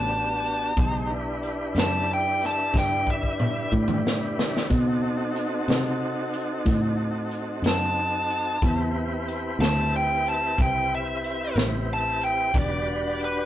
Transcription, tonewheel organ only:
0.00 0.73 B3 medium
0.00 0.73 D4 medium
0.00 0.73 F#4 medium
0.00 0.74 G4 medium
0.77 1.11 G#3 medium
0.77 1.10 D#4 medium
0.77 1.10 G4 medium
0.77 1.11 C5 medium
1.10 4.67 D4 medium
1.10 4.67 E4 medium
1.10 4.67 G4 medium
1.10 4.66 B4 medium
4.69 8.58 C4 medium
4.69 8.59 D#4 medium
4.69 8.58 F#4 medium
4.69 8.59 A4 medium
8.64 12.52 C4 medium
8.64 12.52 E4 medium
8.64 12.52 G4 medium
8.64 12.52 B4 medium
12.54 13.46 D4 medium
12.54 13.46 F#4 medium
12.54 13.46 G4 medium
12.54 13.46 B4 medium

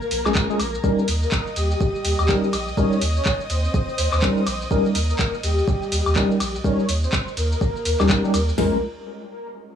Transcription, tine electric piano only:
0.26 0.46 G#3 medium
0.26 0.46 C#4 medium
0.26 0.46 F4 medium
0.26 0.46 G#4 medium
0.50 0.57 G#3 medium
0.50 0.58 C#4 medium
0.50 0.58 F4 medium
0.50 0.58 G#4 medium
0.84 1.01 G3 medium
0.84 1.01 C#4 medium
0.84 1.01 D#4 medium
0.84 1.01 A#4 loud
2.29 2.46 G3 loud
2.29 2.46 C#4 medium
2.29 2.46 D#4 medium
2.29 2.46 A#4 loud
2.77 2.94 G3 loud
2.77 2.94 C#4 medium
2.77 2.94 D#4 medium
2.77 2.94 A#4 loud
4.22 4.39 G3 loud
4.22 4.39 C#4 medium
4.22 4.39 D#4 medium
4.22 4.39 A#4 loud
4.71 4.88 G3 medium
4.71 4.88 C#4 medium
4.71 4.88 D#4 medium
4.71 4.88 A#4 loud
6.16 6.33 G3 loud
6.16 6.33 C#4 medium
6.16 6.33 D#4 medium
6.16 6.33 A#4 loud
6.64 6.81 G3 medium
6.64 6.81 C#4 medium
6.64 6.81 D#4 medium
6.64 6.81 A#4 loud
8.00 8.21 G3 medium
8.00 8.21 C#4 medium
8.00 8.21 D#4 medium
8.00 8.21 G4 medium
8.24 8.32 G3 medium
8.24 8.32 C#4 medium
8.24 8.32 D#4 medium
8.24 8.32 G4 medium
8.58 8.77 G#3 medium
8.58 8.77 C#4 medium
8.58 8.77 F4 medium
8.58 8.77 A#4 loud

